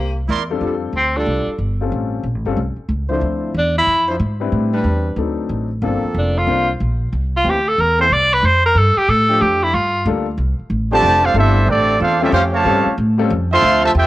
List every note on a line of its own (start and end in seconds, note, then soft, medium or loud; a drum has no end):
0.00 0.27 C2 medium
0.00 0.18 A#3 medium
0.00 0.18 G4 medium
0.00 0.18 C5 medium
0.28 0.60 E2 medium
0.28 0.43 E4 medium
0.28 0.43 A#4 medium
0.28 0.43 D5 medium
0.28 0.43 C6 medium
0.50 0.92 G3 medium
0.50 0.92 C4 medium
0.50 0.92 D4 medium
0.50 0.92 F4 medium
0.50 0.92 A4 medium
0.61 0.92 F2 medium
0.61 0.76 G3 medium
0.61 0.75 D4 medium
0.61 0.75 F4 medium
0.61 0.76 A4 medium
0.93 1.25 D2 medium
0.97 1.18 C4 medium
1.15 1.57 G3 medium
1.15 1.57 D4 medium
1.15 1.49 D4 medium
1.15 1.58 F4 medium
1.15 1.57 A4 loud
1.26 1.46 C2 medium
1.47 muted upright bass stroke soft
1.58 1.91 G1 medium
1.81 2.22 G3 soft
1.81 2.23 C4 medium
1.81 2.23 C#4 medium
1.81 2.23 F4 medium
1.81 2.23 A4 medium
1.92 2.23 A1 medium
2.23 2.35 A#1 medium
2.35 2.45 A1 medium
2.45 2.56 G1 medium
2.45 2.56 G3 medium
2.45 2.56 C4 medium
2.45 2.56 C#4 medium
2.45 2.57 F4 medium
2.45 2.57 A4 medium
2.57 2.76 C2 medium
2.76 muted upright bass stroke soft
2.89 3.21 C#2 medium
3.09 3.52 F3 medium
3.09 3.52 F3 soft
3.09 3.53 C4 soft
3.09 3.52 D4 medium
3.09 3.53 D4 soft
3.09 3.52 E4 medium
3.09 3.53 E4 soft
3.09 3.53 A4 soft
3.09 3.52 C5 loud
3.21 3.53 D2 medium
3.54 3.86 E2 medium
3.54 3.76 D4 medium
3.78 4.07 E4 loud
3.87 4.19 F2 medium
4.08 4.16 F3 medium
4.08 4.16 D4 medium
4.08 4.16 E4 medium
4.08 4.16 C5 loud
4.19 4.51 G#2 medium
4.40 4.82 G3 medium
4.40 4.83 C4 medium
4.40 4.83 D4 medium
4.40 4.83 E4 medium
4.40 4.83 B4 medium
4.52 4.83 A2 medium
4.72 5.15 G3 loud
4.72 5.16 C4 medium
4.72 5.15 D4 loud
4.72 5.15 B4 loud
4.84 5.16 E2 medium
5.16 5.49 D2 medium
5.16 5.67 F#3 soft
5.16 5.67 C4 soft
5.16 5.67 D4 soft
5.16 5.67 D#4 soft
5.16 5.67 A4 medium
5.49 5.81 A1 medium
5.82 6.02 G1 medium
5.82 6.74 F3 medium
5.82 6.73 A#3 medium
5.82 6.02 A#3 medium
5.82 6.74 C4 medium
5.82 6.02 C4 soft
5.82 6.02 D4 medium
5.82 6.02 F4 soft
5.82 6.74 A4 loud
5.82 6.02 A4 medium
6.03 muted upright bass stroke soft
6.14 6.46 F1 medium
6.14 6.40 D4 medium
6.38 6.70 F4 medium
6.47 6.79 C2 medium
6.47 6.67 A#3 medium
6.47 6.67 C4 medium
6.47 6.67 D4 medium
6.47 6.67 F4 medium
6.47 6.67 C5 medium
6.80 7.12 A#1 medium
7.13 7.44 C2 medium
7.36 7.51 F4 medium
7.44 7.77 D2 medium
7.44 7.59 E3 medium
7.44 7.59 A#3 medium
7.44 7.59 C4 medium
7.44 7.59 G4 medium
7.49 7.69 G4 medium
7.68 7.82 A4 loud
7.78 8.09 E2 medium
7.78 8.00 A#4 loud
7.98 8.07 E3 medium
7.98 8.07 A#3 medium
7.98 8.06 C4 medium
7.98 8.07 A4 loud
7.98 8.14 C5 loud
8.10 8.42 C2 medium
8.10 8.35 D5 loud
8.33 8.47 B4 loud
8.43 8.75 F2 medium
8.43 8.65 C5 loud
8.66 8.79 A#4 loud
8.75 8.95 G2 medium
8.75 8.99 A4 loud
8.97 9.11 G4 loud
8.97 muted upright bass stroke soft
9.08 9.40 A2 medium
9.08 9.43 A4 loud
9.28 9.71 F3 loud
9.28 9.70 A3 medium
9.28 9.70 D4 medium
9.28 9.71 G4 loud
9.41 9.73 F2 medium
9.41 9.65 G4 medium
9.63 9.76 E4 medium
9.74 10.05 G2 medium
9.74 10.07 F4 medium
10.06 10.37 D2 medium
10.06 10.25 G3 medium
10.06 10.25 A#3 medium
10.06 10.25 D4 medium
10.06 10.25 F4 medium
10.06 10.25 A4 medium
10.38 10.58 C2 medium
10.59 muted upright bass stroke soft
10.70 11.02 A1 medium
10.91 11.22 C3 medium
10.91 11.22 D3 medium
10.91 11.33 F3 loud
10.91 11.02 G3 medium
10.91 11.33 A3 medium
10.91 11.22 A3 medium
10.91 11.02 C4 medium
10.91 11.33 D4 medium
10.91 11.03 D4 medium
10.91 11.03 F4 medium
10.91 11.34 G4 loud
10.91 11.23 G4 medium
10.91 11.03 A4 medium
10.91 11.23 C5 loud
10.91 11.23 D5 medium
10.91 11.23 A5 loud
11.03 11.33 F1 loud
11.23 11.34 C4 medium
11.23 11.36 D4 medium
11.23 11.36 F4 medium
11.23 11.35 A4 medium
11.23 11.35 C5 medium
11.23 11.36 F5 loud
11.34 11.67 G1 loud
11.34 11.54 G3 medium
11.34 11.65 A3 medium
11.34 11.54 C4 medium
11.34 11.66 C4 medium
11.34 11.54 D4 medium
11.34 11.67 D4 medium
11.34 11.66 E4 medium
11.34 11.55 F4 medium
11.34 11.55 A4 medium
11.34 11.67 A4 medium
11.34 11.67 C5 medium
11.34 11.67 E5 loud
11.66 11.99 A1 medium
11.66 12.00 D3 medium
11.66 12.00 A3 medium
11.66 12.02 C4 medium
11.66 11.97 D4 medium
11.66 12.01 G4 medium
11.66 11.99 A4 medium
11.66 12.02 D5 loud
11.98 12.32 E2 medium
11.98 12.19 C4 medium
11.98 12.19 D4 medium
11.98 12.20 D4 medium
11.98 12.19 F4 medium
11.98 12.20 A4 medium
11.98 12.20 C5 medium
11.98 12.20 F5 loud
12.20 12.63 F3 loud
12.20 12.32 G3 medium
12.20 12.63 A3 loud
12.20 12.32 C4 medium
12.20 12.33 C4 medium
12.20 12.32 C#4 medium
12.20 12.63 C#4 loud
12.20 12.31 E4 medium
12.20 12.32 F4 medium
12.20 12.33 F4 medium
12.20 12.63 G4 loud
12.20 12.33 A4 medium
12.20 12.32 A4 medium
12.20 12.33 E5 medium
12.32 12.64 F2 loud
12.32 12.42 G3 medium
12.32 12.42 C#4 medium
12.32 12.42 F4 medium
12.32 12.42 G4 medium
12.32 12.43 C5 medium
12.32 12.43 F5 loud
12.52 12.95 C#3 medium
12.52 12.94 F3 medium
12.52 12.95 A3 medium
12.52 12.95 G4 medium
12.52 12.95 C#5 medium
12.52 12.95 F5 medium
12.52 12.95 A5 loud
12.65 12.85 G2 loud
12.65 12.85 G3 medium
12.65 12.85 C4 medium
12.65 12.85 C#4 medium
12.65 12.85 F4 medium
12.65 12.85 A4 medium
12.86 muted upright bass stroke soft
12.98 13.30 A2 medium
13.18 13.29 G3 medium
13.18 13.29 C4 medium
13.18 13.29 C#4 medium
13.18 13.30 F4 medium
13.18 13.30 A4 medium
13.30 13.62 F2 loud
13.51 13.82 F3 loud
13.51 13.94 F3 loud
13.51 13.82 A3 loud
13.51 13.82 C4 loud
13.51 13.94 D4 loud
13.51 13.94 F4 loud
13.51 13.82 A4 loud
13.51 13.94 C5 loud
13.51 13.82 E5 loud
13.51 13.82 F5 loud
13.51 13.82 C6 loud
13.62 13.94 D2 loud
13.84 13.89 C3 medium
13.84 13.89 F3 medium
13.84 13.89 A3 medium
13.84 13.90 F4 medium
13.84 13.90 C5 medium
13.84 13.90 E5 medium
13.84 13.90 A5 loud
13.95 14.07 E2 loud
13.95 14.07 A3 medium
13.95 14.07 C4 medium
13.95 14.07 F4 medium
13.95 14.07 G4 medium
13.95 14.07 C5 medium
13.95 14.07 E5 medium
13.95 14.07 G5 medium